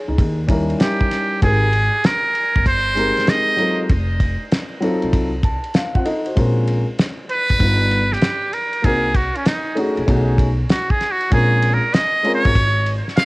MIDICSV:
0, 0, Header, 1, 5, 480
1, 0, Start_track
1, 0, Tempo, 618557
1, 1101, Time_signature, 4, 2, 24, 8
1, 10282, End_track
2, 0, Start_track
2, 0, Title_t, "Muted trumpet"
2, 0, Program_c, 0, 59
2, 629, Note_on_c, 0, 67, 77
2, 1074, Note_off_c, 0, 67, 0
2, 1110, Note_on_c, 0, 68, 92
2, 1595, Note_on_c, 0, 70, 88
2, 1607, Note_off_c, 0, 68, 0
2, 2066, Note_off_c, 0, 70, 0
2, 2071, Note_on_c, 0, 72, 109
2, 2556, Note_on_c, 0, 75, 98
2, 2568, Note_off_c, 0, 72, 0
2, 2947, Note_off_c, 0, 75, 0
2, 5676, Note_on_c, 0, 71, 117
2, 6307, Note_on_c, 0, 67, 91
2, 6318, Note_off_c, 0, 71, 0
2, 6624, Note_on_c, 0, 70, 90
2, 6636, Note_off_c, 0, 67, 0
2, 6865, Note_on_c, 0, 68, 93
2, 6877, Note_off_c, 0, 70, 0
2, 7106, Note_on_c, 0, 66, 78
2, 7117, Note_off_c, 0, 68, 0
2, 7265, Note_on_c, 0, 61, 74
2, 7276, Note_off_c, 0, 66, 0
2, 7348, Note_on_c, 0, 63, 71
2, 7359, Note_off_c, 0, 61, 0
2, 7584, Note_off_c, 0, 63, 0
2, 8311, Note_on_c, 0, 66, 81
2, 8462, Note_on_c, 0, 68, 89
2, 8474, Note_off_c, 0, 66, 0
2, 8623, Note_on_c, 0, 66, 95
2, 8635, Note_off_c, 0, 68, 0
2, 8782, Note_off_c, 0, 66, 0
2, 8787, Note_on_c, 0, 68, 95
2, 9108, Note_on_c, 0, 70, 88
2, 9120, Note_off_c, 0, 68, 0
2, 9262, Note_on_c, 0, 75, 113
2, 9274, Note_off_c, 0, 70, 0
2, 9575, Note_off_c, 0, 75, 0
2, 9580, Note_on_c, 0, 73, 110
2, 10029, Note_off_c, 0, 73, 0
2, 10223, Note_on_c, 0, 77, 116
2, 10282, Note_off_c, 0, 77, 0
2, 10282, End_track
3, 0, Start_track
3, 0, Title_t, "Grand piano"
3, 0, Program_c, 1, 0
3, 61, Note_on_c, 1, 68, 57
3, 66, Note_on_c, 1, 63, 59
3, 288, Note_off_c, 1, 68, 0
3, 291, Note_off_c, 1, 63, 0
3, 366, Note_on_c, 1, 55, 71
3, 374, Note_on_c, 1, 61, 59
3, 381, Note_on_c, 1, 63, 65
3, 387, Note_on_c, 1, 64, 67
3, 396, Note_on_c, 1, 70, 77
3, 1061, Note_off_c, 1, 55, 0
3, 1065, Note_off_c, 1, 61, 0
3, 1068, Note_off_c, 1, 63, 0
3, 1071, Note_off_c, 1, 64, 0
3, 1076, Note_off_c, 1, 70, 0
3, 1088, Note_on_c, 1, 56, 62
3, 1096, Note_on_c, 1, 60, 53
3, 1104, Note_on_c, 1, 63, 49
3, 1109, Note_on_c, 1, 67, 52
3, 1117, Note_on_c, 1, 70, 65
3, 1285, Note_off_c, 1, 56, 0
3, 1290, Note_off_c, 1, 60, 0
3, 1293, Note_off_c, 1, 63, 0
3, 1296, Note_off_c, 1, 67, 0
3, 1300, Note_off_c, 1, 70, 0
3, 2289, Note_on_c, 1, 56, 74
3, 2297, Note_on_c, 1, 60, 59
3, 2303, Note_on_c, 1, 63, 54
3, 2310, Note_on_c, 1, 67, 56
3, 2317, Note_on_c, 1, 70, 75
3, 2763, Note_off_c, 1, 60, 0
3, 2767, Note_on_c, 1, 54, 66
3, 2771, Note_off_c, 1, 63, 0
3, 2775, Note_on_c, 1, 60, 54
3, 2783, Note_on_c, 1, 63, 57
3, 2788, Note_on_c, 1, 65, 57
3, 2795, Note_on_c, 1, 69, 72
3, 2965, Note_off_c, 1, 54, 0
3, 2969, Note_off_c, 1, 60, 0
3, 2973, Note_off_c, 1, 63, 0
3, 2975, Note_off_c, 1, 65, 0
3, 2979, Note_off_c, 1, 69, 0
3, 2982, Note_off_c, 1, 56, 0
3, 2992, Note_off_c, 1, 67, 0
3, 2996, Note_off_c, 1, 70, 0
3, 3728, Note_on_c, 1, 54, 77
3, 3735, Note_on_c, 1, 60, 72
3, 3742, Note_on_c, 1, 63, 73
3, 3749, Note_on_c, 1, 65, 70
3, 3755, Note_on_c, 1, 69, 89
3, 4101, Note_off_c, 1, 54, 0
3, 4104, Note_off_c, 1, 60, 0
3, 4108, Note_off_c, 1, 63, 0
3, 4111, Note_off_c, 1, 65, 0
3, 4114, Note_off_c, 1, 69, 0
3, 4224, Note_on_c, 1, 81, 70
3, 4446, Note_off_c, 1, 81, 0
3, 4466, Note_on_c, 1, 77, 69
3, 4611, Note_off_c, 1, 77, 0
3, 4617, Note_on_c, 1, 65, 62
3, 4619, Note_on_c, 1, 78, 73
3, 4623, Note_on_c, 1, 60, 54
3, 4695, Note_off_c, 1, 78, 0
3, 4696, Note_off_c, 1, 65, 0
3, 4697, Note_on_c, 1, 69, 66
3, 4697, Note_on_c, 1, 75, 66
3, 4699, Note_off_c, 1, 60, 0
3, 4702, Note_on_c, 1, 63, 62
3, 4849, Note_off_c, 1, 69, 0
3, 4852, Note_off_c, 1, 63, 0
3, 4858, Note_on_c, 1, 72, 59
3, 4864, Note_on_c, 1, 66, 46
3, 4922, Note_off_c, 1, 75, 0
3, 4925, Note_on_c, 1, 56, 65
3, 4933, Note_on_c, 1, 60, 59
3, 4939, Note_on_c, 1, 61, 54
3, 4947, Note_on_c, 1, 65, 60
3, 4955, Note_on_c, 1, 70, 71
3, 5087, Note_off_c, 1, 72, 0
3, 5090, Note_off_c, 1, 66, 0
3, 5300, Note_off_c, 1, 56, 0
3, 5303, Note_off_c, 1, 60, 0
3, 5307, Note_off_c, 1, 61, 0
3, 5311, Note_off_c, 1, 65, 0
3, 5314, Note_off_c, 1, 70, 0
3, 5884, Note_on_c, 1, 55, 61
3, 5892, Note_on_c, 1, 59, 53
3, 5900, Note_on_c, 1, 63, 50
3, 5906, Note_on_c, 1, 65, 52
3, 5913, Note_on_c, 1, 71, 62
3, 6196, Note_off_c, 1, 55, 0
3, 6200, Note_off_c, 1, 59, 0
3, 6204, Note_off_c, 1, 63, 0
3, 6207, Note_off_c, 1, 65, 0
3, 6210, Note_off_c, 1, 71, 0
3, 6845, Note_on_c, 1, 58, 65
3, 6853, Note_on_c, 1, 60, 62
3, 6861, Note_on_c, 1, 63, 52
3, 6867, Note_on_c, 1, 66, 55
3, 6874, Note_on_c, 1, 70, 76
3, 7044, Note_off_c, 1, 58, 0
3, 7048, Note_off_c, 1, 60, 0
3, 7052, Note_off_c, 1, 63, 0
3, 7055, Note_off_c, 1, 66, 0
3, 7058, Note_off_c, 1, 70, 0
3, 7567, Note_on_c, 1, 57, 75
3, 7572, Note_on_c, 1, 61, 70
3, 7579, Note_on_c, 1, 63, 61
3, 7587, Note_on_c, 1, 66, 64
3, 7595, Note_on_c, 1, 68, 76
3, 7765, Note_off_c, 1, 57, 0
3, 7767, Note_off_c, 1, 61, 0
3, 7771, Note_off_c, 1, 63, 0
3, 7775, Note_off_c, 1, 66, 0
3, 7779, Note_off_c, 1, 68, 0
3, 7806, Note_on_c, 1, 57, 73
3, 7814, Note_on_c, 1, 61, 68
3, 7820, Note_on_c, 1, 63, 71
3, 7828, Note_on_c, 1, 66, 70
3, 7835, Note_on_c, 1, 68, 77
3, 8117, Note_off_c, 1, 57, 0
3, 8121, Note_off_c, 1, 61, 0
3, 8124, Note_off_c, 1, 63, 0
3, 8128, Note_off_c, 1, 66, 0
3, 8131, Note_off_c, 1, 68, 0
3, 8766, Note_on_c, 1, 56, 63
3, 8773, Note_on_c, 1, 60, 58
3, 8782, Note_on_c, 1, 61, 55
3, 8787, Note_on_c, 1, 65, 60
3, 8795, Note_on_c, 1, 70, 77
3, 9140, Note_off_c, 1, 56, 0
3, 9143, Note_off_c, 1, 60, 0
3, 9148, Note_off_c, 1, 61, 0
3, 9150, Note_off_c, 1, 65, 0
3, 9155, Note_off_c, 1, 70, 0
3, 9488, Note_on_c, 1, 56, 68
3, 9495, Note_on_c, 1, 60, 67
3, 9500, Note_on_c, 1, 61, 70
3, 9508, Note_on_c, 1, 65, 74
3, 9516, Note_on_c, 1, 70, 83
3, 9685, Note_off_c, 1, 56, 0
3, 9689, Note_off_c, 1, 60, 0
3, 9691, Note_off_c, 1, 61, 0
3, 9695, Note_off_c, 1, 65, 0
3, 9699, Note_off_c, 1, 70, 0
3, 10282, End_track
4, 0, Start_track
4, 0, Title_t, "Upright bass"
4, 0, Program_c, 2, 32
4, 62, Note_on_c, 2, 37, 76
4, 131, Note_off_c, 2, 37, 0
4, 143, Note_on_c, 2, 39, 105
4, 557, Note_off_c, 2, 39, 0
4, 1106, Note_on_c, 2, 32, 108
4, 1448, Note_off_c, 2, 32, 0
4, 1987, Note_on_c, 2, 31, 73
4, 2399, Note_off_c, 2, 31, 0
4, 3025, Note_on_c, 2, 29, 98
4, 3368, Note_off_c, 2, 29, 0
4, 3905, Note_on_c, 2, 36, 80
4, 4318, Note_off_c, 2, 36, 0
4, 4943, Note_on_c, 2, 34, 96
4, 5287, Note_off_c, 2, 34, 0
4, 5823, Note_on_c, 2, 32, 73
4, 5892, Note_off_c, 2, 32, 0
4, 5901, Note_on_c, 2, 31, 87
4, 6316, Note_off_c, 2, 31, 0
4, 6863, Note_on_c, 2, 36, 89
4, 7206, Note_off_c, 2, 36, 0
4, 7743, Note_on_c, 2, 36, 74
4, 7812, Note_off_c, 2, 36, 0
4, 7821, Note_on_c, 2, 35, 97
4, 8236, Note_off_c, 2, 35, 0
4, 8782, Note_on_c, 2, 34, 94
4, 9126, Note_off_c, 2, 34, 0
4, 9664, Note_on_c, 2, 32, 90
4, 10077, Note_off_c, 2, 32, 0
4, 10282, End_track
5, 0, Start_track
5, 0, Title_t, "Drums"
5, 142, Note_on_c, 9, 36, 103
5, 146, Note_on_c, 9, 51, 66
5, 220, Note_off_c, 9, 36, 0
5, 223, Note_off_c, 9, 51, 0
5, 377, Note_on_c, 9, 36, 98
5, 384, Note_on_c, 9, 51, 61
5, 455, Note_off_c, 9, 36, 0
5, 462, Note_off_c, 9, 51, 0
5, 542, Note_on_c, 9, 51, 36
5, 619, Note_off_c, 9, 51, 0
5, 620, Note_on_c, 9, 44, 44
5, 620, Note_on_c, 9, 51, 62
5, 627, Note_on_c, 9, 38, 113
5, 697, Note_off_c, 9, 44, 0
5, 697, Note_off_c, 9, 51, 0
5, 704, Note_off_c, 9, 38, 0
5, 781, Note_on_c, 9, 36, 83
5, 859, Note_off_c, 9, 36, 0
5, 863, Note_on_c, 9, 51, 56
5, 866, Note_on_c, 9, 38, 33
5, 941, Note_off_c, 9, 51, 0
5, 943, Note_off_c, 9, 38, 0
5, 1102, Note_on_c, 9, 51, 68
5, 1103, Note_on_c, 9, 36, 102
5, 1180, Note_off_c, 9, 51, 0
5, 1181, Note_off_c, 9, 36, 0
5, 1340, Note_on_c, 9, 51, 52
5, 1418, Note_off_c, 9, 51, 0
5, 1583, Note_on_c, 9, 44, 44
5, 1583, Note_on_c, 9, 51, 63
5, 1589, Note_on_c, 9, 38, 111
5, 1661, Note_off_c, 9, 44, 0
5, 1661, Note_off_c, 9, 51, 0
5, 1667, Note_off_c, 9, 38, 0
5, 1823, Note_on_c, 9, 51, 49
5, 1901, Note_off_c, 9, 51, 0
5, 1985, Note_on_c, 9, 36, 89
5, 2062, Note_off_c, 9, 36, 0
5, 2063, Note_on_c, 9, 36, 98
5, 2066, Note_on_c, 9, 51, 74
5, 2141, Note_off_c, 9, 36, 0
5, 2143, Note_off_c, 9, 51, 0
5, 2305, Note_on_c, 9, 51, 59
5, 2383, Note_off_c, 9, 51, 0
5, 2460, Note_on_c, 9, 51, 39
5, 2471, Note_on_c, 9, 38, 33
5, 2538, Note_off_c, 9, 51, 0
5, 2538, Note_on_c, 9, 44, 42
5, 2538, Note_on_c, 9, 51, 59
5, 2545, Note_off_c, 9, 38, 0
5, 2545, Note_on_c, 9, 38, 101
5, 2615, Note_off_c, 9, 44, 0
5, 2615, Note_off_c, 9, 51, 0
5, 2622, Note_off_c, 9, 38, 0
5, 2781, Note_on_c, 9, 51, 47
5, 2858, Note_off_c, 9, 51, 0
5, 3022, Note_on_c, 9, 51, 65
5, 3023, Note_on_c, 9, 36, 105
5, 3099, Note_off_c, 9, 51, 0
5, 3100, Note_off_c, 9, 36, 0
5, 3259, Note_on_c, 9, 36, 86
5, 3260, Note_on_c, 9, 51, 57
5, 3336, Note_off_c, 9, 36, 0
5, 3338, Note_off_c, 9, 51, 0
5, 3503, Note_on_c, 9, 44, 45
5, 3503, Note_on_c, 9, 51, 62
5, 3509, Note_on_c, 9, 38, 101
5, 3580, Note_off_c, 9, 44, 0
5, 3580, Note_off_c, 9, 51, 0
5, 3587, Note_off_c, 9, 38, 0
5, 3741, Note_on_c, 9, 51, 52
5, 3818, Note_off_c, 9, 51, 0
5, 3896, Note_on_c, 9, 51, 39
5, 3973, Note_off_c, 9, 51, 0
5, 3981, Note_on_c, 9, 36, 98
5, 3982, Note_on_c, 9, 51, 69
5, 4059, Note_off_c, 9, 36, 0
5, 4060, Note_off_c, 9, 51, 0
5, 4216, Note_on_c, 9, 36, 95
5, 4220, Note_on_c, 9, 51, 50
5, 4293, Note_off_c, 9, 36, 0
5, 4298, Note_off_c, 9, 51, 0
5, 4375, Note_on_c, 9, 51, 37
5, 4452, Note_off_c, 9, 51, 0
5, 4454, Note_on_c, 9, 44, 41
5, 4454, Note_on_c, 9, 51, 55
5, 4461, Note_on_c, 9, 38, 110
5, 4532, Note_off_c, 9, 44, 0
5, 4532, Note_off_c, 9, 51, 0
5, 4539, Note_off_c, 9, 38, 0
5, 4619, Note_on_c, 9, 36, 84
5, 4696, Note_off_c, 9, 36, 0
5, 4699, Note_on_c, 9, 51, 55
5, 4776, Note_off_c, 9, 51, 0
5, 4855, Note_on_c, 9, 51, 43
5, 4933, Note_off_c, 9, 51, 0
5, 4940, Note_on_c, 9, 51, 65
5, 4942, Note_on_c, 9, 36, 93
5, 5018, Note_off_c, 9, 51, 0
5, 5019, Note_off_c, 9, 36, 0
5, 5179, Note_on_c, 9, 51, 57
5, 5257, Note_off_c, 9, 51, 0
5, 5422, Note_on_c, 9, 44, 47
5, 5422, Note_on_c, 9, 51, 62
5, 5428, Note_on_c, 9, 38, 104
5, 5499, Note_off_c, 9, 44, 0
5, 5499, Note_off_c, 9, 51, 0
5, 5506, Note_off_c, 9, 38, 0
5, 5660, Note_on_c, 9, 51, 52
5, 5737, Note_off_c, 9, 51, 0
5, 5814, Note_on_c, 9, 51, 38
5, 5821, Note_on_c, 9, 36, 79
5, 5891, Note_off_c, 9, 51, 0
5, 5899, Note_off_c, 9, 36, 0
5, 5899, Note_on_c, 9, 36, 93
5, 5901, Note_on_c, 9, 51, 61
5, 5977, Note_off_c, 9, 36, 0
5, 5978, Note_off_c, 9, 51, 0
5, 6140, Note_on_c, 9, 51, 55
5, 6218, Note_off_c, 9, 51, 0
5, 6305, Note_on_c, 9, 38, 30
5, 6375, Note_on_c, 9, 44, 45
5, 6375, Note_on_c, 9, 51, 58
5, 6382, Note_off_c, 9, 38, 0
5, 6382, Note_on_c, 9, 38, 107
5, 6452, Note_off_c, 9, 44, 0
5, 6452, Note_off_c, 9, 51, 0
5, 6459, Note_off_c, 9, 38, 0
5, 6619, Note_on_c, 9, 51, 54
5, 6696, Note_off_c, 9, 51, 0
5, 6773, Note_on_c, 9, 51, 42
5, 6851, Note_off_c, 9, 51, 0
5, 6860, Note_on_c, 9, 51, 71
5, 6861, Note_on_c, 9, 36, 92
5, 6938, Note_off_c, 9, 51, 0
5, 6939, Note_off_c, 9, 36, 0
5, 7097, Note_on_c, 9, 36, 82
5, 7098, Note_on_c, 9, 51, 56
5, 7174, Note_off_c, 9, 36, 0
5, 7176, Note_off_c, 9, 51, 0
5, 7260, Note_on_c, 9, 51, 41
5, 7337, Note_off_c, 9, 51, 0
5, 7338, Note_on_c, 9, 44, 47
5, 7338, Note_on_c, 9, 51, 65
5, 7344, Note_on_c, 9, 38, 100
5, 7415, Note_off_c, 9, 44, 0
5, 7415, Note_off_c, 9, 51, 0
5, 7422, Note_off_c, 9, 38, 0
5, 7580, Note_on_c, 9, 51, 56
5, 7657, Note_off_c, 9, 51, 0
5, 7737, Note_on_c, 9, 51, 39
5, 7815, Note_off_c, 9, 51, 0
5, 7821, Note_on_c, 9, 36, 94
5, 7824, Note_on_c, 9, 51, 64
5, 7899, Note_off_c, 9, 36, 0
5, 7902, Note_off_c, 9, 51, 0
5, 8056, Note_on_c, 9, 36, 91
5, 8063, Note_on_c, 9, 51, 59
5, 8133, Note_off_c, 9, 36, 0
5, 8141, Note_off_c, 9, 51, 0
5, 8297, Note_on_c, 9, 44, 43
5, 8297, Note_on_c, 9, 51, 58
5, 8304, Note_on_c, 9, 38, 111
5, 8375, Note_off_c, 9, 44, 0
5, 8375, Note_off_c, 9, 51, 0
5, 8382, Note_off_c, 9, 38, 0
5, 8459, Note_on_c, 9, 36, 81
5, 8537, Note_off_c, 9, 36, 0
5, 8540, Note_on_c, 9, 51, 50
5, 8543, Note_on_c, 9, 38, 34
5, 8618, Note_off_c, 9, 51, 0
5, 8621, Note_off_c, 9, 38, 0
5, 8696, Note_on_c, 9, 51, 46
5, 8773, Note_off_c, 9, 51, 0
5, 8781, Note_on_c, 9, 51, 65
5, 8782, Note_on_c, 9, 36, 106
5, 8858, Note_off_c, 9, 51, 0
5, 8860, Note_off_c, 9, 36, 0
5, 9019, Note_on_c, 9, 51, 60
5, 9097, Note_off_c, 9, 51, 0
5, 9262, Note_on_c, 9, 44, 49
5, 9262, Note_on_c, 9, 51, 64
5, 9269, Note_on_c, 9, 38, 98
5, 9340, Note_off_c, 9, 44, 0
5, 9340, Note_off_c, 9, 51, 0
5, 9346, Note_off_c, 9, 38, 0
5, 9502, Note_on_c, 9, 51, 52
5, 9580, Note_off_c, 9, 51, 0
5, 9658, Note_on_c, 9, 51, 44
5, 9663, Note_on_c, 9, 36, 90
5, 9735, Note_off_c, 9, 51, 0
5, 9740, Note_off_c, 9, 36, 0
5, 9741, Note_on_c, 9, 36, 109
5, 9743, Note_on_c, 9, 51, 61
5, 9818, Note_off_c, 9, 36, 0
5, 9820, Note_off_c, 9, 51, 0
5, 9981, Note_on_c, 9, 51, 58
5, 10059, Note_off_c, 9, 51, 0
5, 10149, Note_on_c, 9, 38, 31
5, 10217, Note_on_c, 9, 44, 43
5, 10217, Note_on_c, 9, 51, 60
5, 10224, Note_off_c, 9, 38, 0
5, 10224, Note_on_c, 9, 38, 121
5, 10282, Note_off_c, 9, 38, 0
5, 10282, Note_off_c, 9, 44, 0
5, 10282, Note_off_c, 9, 51, 0
5, 10282, End_track
0, 0, End_of_file